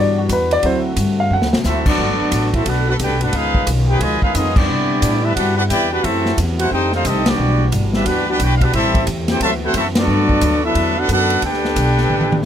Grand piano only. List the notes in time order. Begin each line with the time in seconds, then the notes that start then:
Already playing: G3 D4 F#4 D5
0.18 F#4
0.33 B4
0.53 D5
0.63 F#3 C4 E4 C5
1.20 F5
1.33 F#5